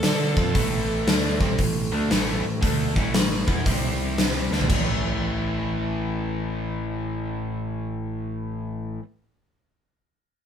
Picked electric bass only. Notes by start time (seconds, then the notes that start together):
0.03 D3
0.37 F2
0.55 A1
1.07 D2
1.40 C2
1.59 A1
1.92 D2
2.10 A1
2.44 A1
2.63 D2
2.96 A1
3.14 A1
3.48 E2
3.66 C2
4.51 D2
4.70 A1